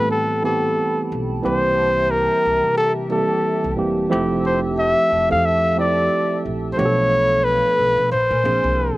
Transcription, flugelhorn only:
0.11 0.42 A4 medium
0.45 1.07 A4 medium
1.45 2.12 C5 loud
2.11 2.77 A#4 loud
2.77 2.92 A4 medium
3.12 3.74 A4 medium
4.46 4.60 C5 medium
4.79 5.26 E5 loud
5.31 5.47 F5 medium
5.45 5.78 E5 medium
5.80 6.41 D5 medium
6.73 6.80 C5 medium
6.78 7.46 C#5 loud
7.44 8.10 B4 loud
8.11 8.97 C5 medium

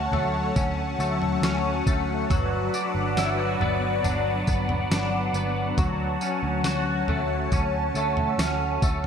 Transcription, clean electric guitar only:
0.00 0.11 A3 medium
0.00 0.55 C#4 medium
0.00 3.17 F#4 medium
0.13 0.99 A3 medium
0.56 1.43 C#4 medium
1.00 1.86 A3 medium
1.44 2.39 C#4 medium
1.87 2.39 A3 medium
2.30 5.78 F#3 medium
2.74 4.04 D4 medium
3.18 3.39 E4 medium
3.39 5.87 F#4 medium
3.61 4.47 B3 medium
4.05 4.91 D4 medium
4.48 5.34 B3 medium
4.92 6.21 D4 medium
5.35 5.87 B3 medium
5.78 9.07 F#3 medium
6.22 7.52 C#4 medium
6.65 9.07 F#4 medium
7.08 7.95 A3 medium
7.52 8.38 C#4 medium
7.96 8.82 A3 medium
8.39 9.07 C#4 medium
8.83 9.07 A3 medium

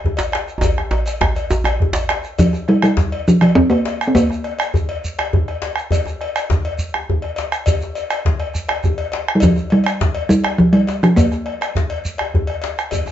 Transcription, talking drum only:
2.39 2.70 F3 medium
2.69 2.83 G3 medium
2.83 3.29 G3 medium
3.28 3.41 F3 medium
3.42 3.57 F3 medium
3.55 3.69 C4 loud
3.70 3.98 A#3 medium
4.08 4.16 C4 medium
4.15 5.33 A#3 medium
9.35 9.45 G3 medium
9.43 9.74 F3 medium
9.72 10.29 G3 medium
10.29 10.60 G3 medium
10.58 10.74 F3 medium
10.73 11.05 G3 medium
11.03 11.18 F3 medium
11.16 11.75 A#3 medium

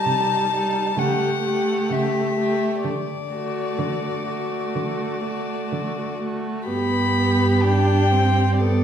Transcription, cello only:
0.06 0.84 C3 soft
0.97 1.77 C#3 soft
1.91 2.71 C#3 soft
2.85 3.65 D3 soft
3.79 4.61 D3 soft
4.76 5.59 D3 soft
5.72 6.55 D3 soft
6.69 8.84 G2 soft

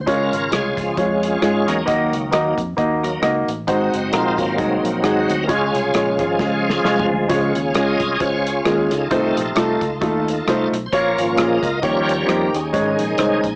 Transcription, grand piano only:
0.06 0.73 C#3 medium
0.06 0.32 G#3 medium
0.06 0.33 C#4 medium
0.06 0.33 F4 medium
0.06 0.33 C#5 loud
0.51 0.77 G#3 medium
0.51 0.78 C#4 medium
0.51 0.78 F4 medium
0.51 0.78 C#5 medium
0.97 1.23 G#3 medium
0.97 1.23 C#4 medium
0.97 1.23 F4 medium
0.97 1.23 C#5 medium
1.41 1.67 G#3 medium
1.41 1.68 C#4 medium
1.41 1.68 F4 medium
1.41 1.68 G#4 medium
1.86 2.53 D#3 medium
1.86 2.12 A#3 medium
1.86 2.13 D#4 medium
1.86 2.13 F#4 medium
1.86 2.13 D#5 loud
2.31 2.58 A#3 medium
2.31 2.58 D#4 medium
2.31 2.58 F#4 medium
2.31 2.58 D#5 medium
2.77 3.03 A#3 medium
2.77 3.03 D#4 medium
2.77 3.03 F#4 medium
2.77 3.04 D#5 medium
3.22 3.48 A#3 medium
3.22 3.48 D#4 medium
3.22 3.49 F#4 medium
3.22 3.49 D#5 medium
3.67 4.34 G#2 medium
3.67 3.93 G#3 medium
3.67 3.93 D#4 medium
3.67 3.94 F#4 medium
3.67 3.94 C5 loud
4.12 4.38 G#3 medium
4.12 4.39 D#4 medium
4.12 4.39 F#4 medium
4.12 4.39 A#4 medium
4.56 4.83 G#3 medium
4.56 4.83 D#4 medium
4.56 4.84 F#4 medium
4.56 4.84 G#4 medium
5.02 5.29 G#3 medium
5.02 5.29 D#4 medium
5.02 5.29 F#4 medium
5.02 5.29 G#4 medium
5.47 6.15 C#3 medium
5.47 5.74 G#3 medium
5.47 5.74 C#4 medium
5.47 5.74 F4 medium
5.47 5.75 C#5 loud
5.93 6.20 G#3 medium
5.93 6.20 C#4 medium
5.93 6.20 F4 medium
5.93 6.20 C#5 medium
6.39 6.65 G#3 medium
6.39 6.65 C#4 medium
6.39 6.65 F4 medium
6.39 6.66 G#4 medium
6.84 7.10 G#3 medium
6.84 7.10 C#4 medium
6.84 7.11 F4 medium
6.84 7.11 C#5 medium
6.84 7.08 F5 medium
7.09 7.28 G#5 medium
7.28 7.96 C#3 medium
7.28 7.55 G#3 medium
7.28 7.55 C#4 medium
7.28 7.56 F4 medium
7.28 7.56 C#5 loud
7.75 8.01 G#3 medium
7.75 8.01 C#4 medium
7.75 8.01 F4 medium
7.75 8.01 G#4 medium
8.19 8.46 G#3 medium
8.19 8.46 C#4 medium
8.19 8.46 F4 medium
8.19 8.46 C5 medium
8.65 8.91 G#3 medium
8.65 8.91 C#4 medium
8.65 8.92 F4 medium
8.65 8.92 G#4 medium
9.11 9.78 C3 medium
9.11 9.37 A3 medium
9.11 9.37 D#4 medium
9.11 9.37 F4 medium
9.11 9.37 C5 loud
9.55 9.82 A3 medium
9.55 9.82 D#4 medium
9.55 9.82 F4 medium
9.55 9.82 A4 medium
10.01 10.27 A3 medium
10.01 10.27 D#4 medium
10.01 10.28 F4 medium
10.01 10.28 A4 medium
10.47 10.73 A3 medium
10.47 10.73 D#4 medium
10.47 10.73 F4 medium
10.47 10.74 C5 medium
10.92 11.59 A#2 medium
10.92 11.18 A#3 medium
10.92 11.18 C#4 medium
10.92 11.19 F4 medium
10.92 11.19 C#5 loud
11.36 11.62 A#3 medium
11.36 11.63 C#4 medium
11.36 11.63 F4 medium
11.36 11.63 G#4 medium
11.82 12.49 D#3 medium
11.82 12.08 A#3 medium
11.82 12.08 D#4 medium
11.82 12.09 G4 medium
11.82 12.09 C#5 medium
12.26 12.53 A#3 medium
12.26 12.53 D#4 medium
12.26 12.53 G4 medium
12.26 12.53 C5 medium
12.73 13.39 G#2 medium
12.73 12.99 G#3 medium
12.73 12.99 C#4 medium
12.73 12.99 D#4 medium
12.73 12.99 C#5 medium
13.18 13.44 G#3 medium
13.18 13.44 C#4 medium
13.18 13.44 D#4 medium
13.18 13.45 C5 medium

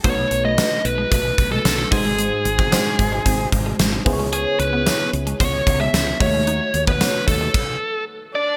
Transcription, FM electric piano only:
0.04 0.81 B2 medium
0.04 0.49 A3 medium
0.04 0.49 D#4 medium
0.04 0.49 F#4 medium
0.04 0.50 B4 medium
0.57 1.48 A3 medium
0.57 1.48 D#4 medium
0.57 1.48 F#4 medium
0.57 1.48 B4 medium
1.91 2.68 G#2 medium
1.91 2.59 G#3 medium
1.91 2.59 D#4 medium
1.91 2.59 F#4 medium
1.91 2.60 C5 medium
2.72 3.62 G#3 medium
2.72 3.62 D#4 medium
2.72 3.62 F#4 medium
2.72 3.62 C5 medium
4.05 4.82 C#3 medium
4.05 4.73 B3 medium
4.05 4.73 E4 medium
4.05 4.74 G#4 medium
4.05 4.13 C5 medium
4.13 4.77 C#5 loud
4.86 5.76 B3 medium
4.86 5.76 E4 medium
4.86 5.77 G#4 medium
4.86 5.77 C#5 medium
6.20 6.97 D#3 medium
6.20 6.88 A3 medium
6.20 6.88 D#4 medium
6.20 6.88 F#4 medium
6.20 6.88 C#5 medium
7.00 7.54 A3 medium
7.00 7.54 D#4 medium
7.00 7.54 F#4 medium
7.00 7.55 C#5 medium

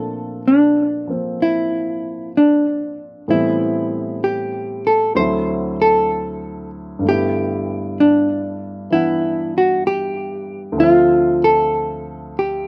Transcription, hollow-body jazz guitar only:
0.00 0.42 A4 medium
0.48 1.16 D4 medium
1.16 1.44 C4 medium
1.42 2.31 E4 medium
2.37 3.26 D4 medium
3.31 4.19 E4 medium
4.24 4.88 G4 medium
4.87 5.16 A4 medium
5.17 5.75 C5 medium
5.82 6.70 A4 medium
7.09 8.02 G4 medium
8.00 8.95 D4 medium
8.93 9.55 E4 medium
9.58 9.84 F#4 medium
9.87 10.80 G4 medium
10.80 11.44 F4 medium
11.44 12.40 A4 medium
12.39 12.67 G4 medium

